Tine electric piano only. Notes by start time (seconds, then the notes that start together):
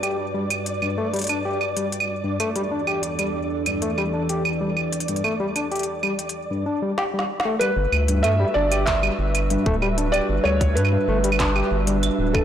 0.03 G4
0.35 G3
0.82 G2
0.98 A3
1.13 G3
1.29 D4
1.45 G4
1.77 G3
2.24 G2
2.40 A3
2.56 G3
2.71 D4
2.87 G4
3.19 G3
3.66 G2
3.82 A3
3.98 G3
4.14 D4
4.29 G4
4.61 G3
5.08 G2
5.24 A3
5.40 G3
5.56 D4
5.71 G4
6.03 G3
6.50 G2
6.66 D4
6.82 G3
6.98 G4
7.14 G3
7.45 A3
7.61 G3
8.08 G2
8.24 A3
8.40 G3
8.56 D4
8.72 G4
9.03 G3
9.50 G2
9.66 A3
9.82 G3
9.98 D4
10.14 G4
10.45 G3
10.92 G2
11.08 A3
11.24 G3
11.40 D4
11.56 G4
11.87 G3
12.35 G2